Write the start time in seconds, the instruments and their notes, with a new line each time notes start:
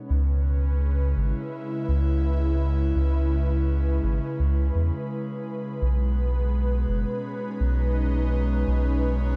Already playing: analog synth pad B2 G#3 C#4 B4
0.10 sub bass C#2, analog synth pad C#3
0.37 analog synth pad B4
0.71 analog synth pad G#3
1.02 analog synth pad E4
1.17 sub bass G#1
1.89 sub bass C#2
2.96 sub bass C#2
4.03 sub bass G#1
4.39 sub bass C#2
4.75 sub bass E2
5.82 sub bass B1, analog synth pad B2
6.84 analog synth pad C#4
6.89 sub bass F#1
7.28 analog synth pad D#4
7.60 sub bass B1
8.68 sub bass B1